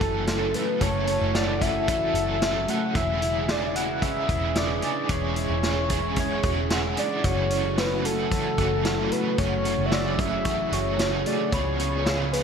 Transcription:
Already playing: F#2 C#3 E3 F#3 A3 C#4 E4 F#4 A4 E5
0.01 F#1 E3 A3 C#4 A4, kick, closed hi-hat
0.27 F#2 C#3 E3 A3 C#4 A4, snare, closed hi-hat
0.54 A3 C#4 A4 B4, closed hi-hat
0.58 E3
0.81 F#1 F#2 C#3 E3 A3 C#4 A4 C#5, kick, closed hi-hat
1.07 A3 C#4 A4, closed hi-hat
1.12 E3
1.21 F#1
1.34 F#2 C#3 E3 A3 C#4 A4 D5 F#5, snare, closed hi-hat
1.61 E3 A3 C#4 A4 E5, kick, closed hi-hat
1.88 E3 A3 C#4, kick, closed hi-hat
1.92 A4
2.14 F#1 A3 C#4 A4, closed hi-hat
2.18 E3
2.42 F#2 C#3 E3 A3 C#4 A4, snare, closed hi-hat
2.68 A3 C#4 A4 F#5, closed hi-hat
2.72 E3
2.95 E1 E3 G#3 C#4 E4 G#4 E5, kick, closed hi-hat
3.22 E4 G#4, closed hi-hat
3.26 C#4
3.49 E3 C#4 E4 G#4 D5 E5, snare, closed hi-hat
3.75 C#4 E4 G#4 F#5, closed hi-hat
4.02 E3 C#4 E4 G#4 E5, kick, closed hi-hat
4.29 E1 E4 G#4, kick, closed hi-hat
4.33 C#4
4.55 E3 C#4 E4 G#4 D5, snare, closed hi-hat
4.82 C#4 E4 G#4 D5, closed hi-hat
5.09 E1 E3 C#4 E4 G#4 C#5, kick, closed hi-hat
5.36 C#4 E4 G#4, closed hi-hat
5.50 E1
5.63 E3 C#4 E4 G#4, snare, closed hi-hat
5.90 E4 G#4, kick, closed hi-hat
5.94 C#4
6.16 E3 C#4 E4 C#5, kick, closed hi-hat
6.21 G#4
6.43 E1 E4 F#4 G#4, kick, closed hi-hat
6.48 C#4
6.57 G#4
6.70 E3 C#4 E4 G#4 F#5, snare, closed hi-hat
6.97 C#4 E4 G#4 D5, closed hi-hat
7.24 F#1 F#2 C#3 E3 F#3 A3 C#4 E4 F#4 C#5, kick, closed hi-hat
7.50 A3 C#4 F#4, closed hi-hat
7.54 E3
7.77 F#2 C#3 E3 A3 C#4 F#4 B4, snare, closed hi-hat
8.05 E3 A3 C#4 F#4 A4, closed hi-hat
8.31 E3 A3 C#4 F#4, kick, closed hi-hat
8.58 F#1 E3 A3 C#4 F#4, kick, closed hi-hat
8.84 F#2 C#3 E3 A3 C#4 F#4, snare, closed hi-hat
9.11 E3 A3 C#4 F#4 B4, closed hi-hat
9.37 F#1 F#2 C#3 E3 A3 C#4 F#4 G#4 C#5 C#6, kick, closed hi-hat
9.64 E3 A3 C#4 F#4, closed hi-hat
9.78 F#1
9.86 E5
9.91 F#2 C#3 E3 A3 C#4 F#4 D5 E6, snare, closed hi-hat
10.17 E3 A3 C#4 F#4 E5, kick, closed hi-hat
10.44 E3 A3 C#4 C#6, kick, closed hi-hat
10.48 F#4
10.71 F#1 A3 C#4 F#4 C#5, closed hi-hat
10.75 E3
10.98 F#2 C#3 E3 A3 C#4 F#4, snare, closed hi-hat
11.25 E3 A3 C#4 F#4 D5, closed hi-hat
11.51 C#2 C#3 F3 G#3 B3 C#4 F4 G#4 C#5 B5, kick, closed hi-hat
11.78 C#4 G#4, closed hi-hat
11.83 B3
12.05 C#3 F3 B3 C#4 G#4 F5, snare, closed hi-hat
12.32 B3 C#4 G#4 B4, closed hi-hat

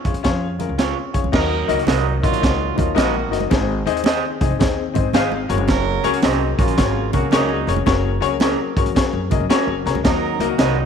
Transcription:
0.05 F2 C#4 F4 G#4 C#5, kick, closed hi-hat
0.14 F#2, closed hi-hat
0.23 F2 C#4 F4 G#4 C#5, kick, snare, closed hi-hat
0.59 C#4 F4 G#4 A#4, closed hi-hat, muted conga, low conga
0.69 C#2
0.77 C#4 F4 G#4 C#5, snare, closed hi-hat, high conga
1.13 D#2 C#4 F4 G#4 C#5, kick, closed hi-hat
1.24 C#2, high conga
1.32 D#2 D#3 F#3 A#3 D#4 F#4 A#4 D#5, kick, snare, crash, muted conga
1.68 C#2 A#3 D#4 F#4 A#4 D#5, closed hi-hat, muted conga
1.79 D#3 A#3 F#4, closed hi-hat
1.86 C2 A#2 F#3 A#3 D#4 F#4 A#4 D#5, snare, closed hi-hat, high conga
2.22 A#1 A#2 F#3 A#3 D#4 F4 F#4 A#4 D#5, kick, closed hi-hat
2.33 closed hi-hat, low conga
2.40 C#2 A#3 D#4 F#4 A#4 D#5, kick, closed hi-hat
2.44 snare
2.76 D#2 F3 A#3 C#4 D#4 F4 F#4 A#4 D#5, kick, closed hi-hat, muted conga, low conga
2.95 A#1 D#3 A#3 D#4 F#4 A#4 D#5, snare, closed hi-hat, high conga
3.14 high conga
3.31 F#1 A#3 D#4 F#4 A#4 D#5, snare, closed hi-hat
3.40 high conga
3.50 G#1 C4 D#4 G#4 C5 D#5, kick, snare, closed hi-hat, muted conga
3.86 D#2 C4 D#4 G#4 C5 D#5, closed hi-hat, muted conga
3.97 closed hi-hat
4.04 C4 D#4 G#4 C5 D#5, snare, closed hi-hat, high conga
4.40 C2 C4 D#4 G#4 C5 D#5, kick, closed hi-hat
4.51 G#1
4.59 D#2 C4 D#4 G#4 C5 D#5, kick, snare, closed hi-hat, low conga
4.94 G#2 C4 D#4 G#4 C5 D#5, kick, closed hi-hat, muted conga, low conga
5.13 G#1 C4 D#4 G#4 C5 D#5 F5, snare, closed hi-hat, high conga
5.32 high conga
5.48 F#1 F#3 A#3 C#4 F#4 G#4 A#4 C#5, closed hi-hat
5.58 high conga
5.68 F#3 C#4 A#4, kick, snare, closed hi-hat, muted conga
6.03 C#2 C#4 F#4 G#4 A#4 C#5, closed hi-hat, muted conga
6.13 C#3 A#3 F#4, closed hi-hat
6.22 C2 D#3 C4 C#4 D#4 F#4 G#4 A#4 D#5, snare, closed hi-hat, high conga
6.58 A#1 C#3 A#3 C#4 F4 F#4 G#4 A#4 C#5, kick, closed hi-hat
6.68 closed hi-hat, low conga
6.76 G#1 C#4 F#4 G#4 A#4 C#5, kick, snare, closed hi-hat
7.12 C2 C#3 A#3 C#4 F#4 G#4 A#4 C#5, kick, closed hi-hat, muted conga, low conga
7.31 C#2 A#2 G#3 C#4 D#4 F#4 G#4 A#4 C#5, snare, closed hi-hat, high conga
7.49 high conga
7.66 F1 C#4 F#4 G#4 A#4 C#5, closed hi-hat
7.76 high conga
7.86 F#1 C#4 F#4 G#4 A#4 C#5, kick, snare, closed hi-hat, muted conga
8.20 C#2 C#4 F#4 G#4 A#4 C#5, closed hi-hat
8.40 C#4 F#4 G#4 A#4 C#5, snare, closed hi-hat, high conga
8.76 G#2 C#4 F#4 G#4 A#4 C#5, kick, closed hi-hat
8.86 F2, closed hi-hat
8.95 C#4 F#4 G#4 A#4 C#5, kick, snare, closed hi-hat, low conga
9.13 F#2
9.30 C#2 C#4 F#4 G#4 A#4 D#5, kick, closed hi-hat, muted conga, low conga
9.40 F#2
9.49 C#4 F#4 G#4 A#4 C#5 F#5, snare, closed hi-hat, high conga
9.67 F#1
9.85 C2 C#4 F#4 G#4 A#4 C#5 A#5, snare, closed hi-hat
9.95 C#2, high conga
10.04 D#2 D#3 F#3 A#3 D#4 F#4 A#4 D#5, kick, snare, closed hi-hat, muted conga
10.39 C#2 A#3 D#4 F#4 A#4 D#5, closed hi-hat, muted conga
10.50 D#3 A#3 F#4
10.58 C2 A#2 F#3 A#3 D#4 F#4 A#4 D#5, snare, closed hi-hat, high conga

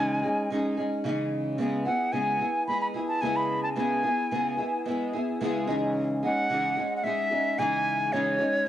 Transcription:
Already playing: C#3 E3 G#3 C#4 D#4 G#4 G#5
0.23 G#3 C#4 D#4 G#4
0.51 G#3 C#4 D#4 G#4
0.77 G#3 C#4 D#4 G#4
1.04 C#3 E3 G#3 C#4 D#4 G#4
1.58 C#3 G#3 B3 E4 G#4
1.85 B3 E4 G#4 F#5
2.12 C#3 G#3 B3 E4 G#4 G#5
2.39 B3 E4 G#4
2.67 G#3 B3 E4 G#4 B5
2.81 B5
2.94 B3 E4 G#4
3.08 A5
3.21 C#3 G#3 B3 E4 G#4 G#5
3.36 B5
3.63 A5
3.76 C#3 G#3 B3 E4 G#4 G#5
4.04 B3 E4 G#4
4.31 C#3 G#3 B3 E4 G#4
4.57 B3 E4 G#4
4.85 G#3 B3 E4 G#4
5.13 B3 E4 G#4
5.41 C#3 G#3 B3 E4 G#4
5.67 C#3 E3 G#3 C#4 D#4 G#4
6.23 G#3 C#4 D#4 G#4 F#5
6.49 C#3 E3 G#3 C#4 D#4 G#4
6.77 G#3 C#4 D#4 G#4
6.97 F#5
7.04 G#3 C#4 D#4 G#4 E5
7.31 G#3 C#4 D#4 G#4
7.58 C#3 E3 G#3 C#4 D#4 G#4 G#5
8.12 C#3 E3 G#3 C#4 D#4 G#4 C#5
8.38 G#3 C#4 D#4 G#4

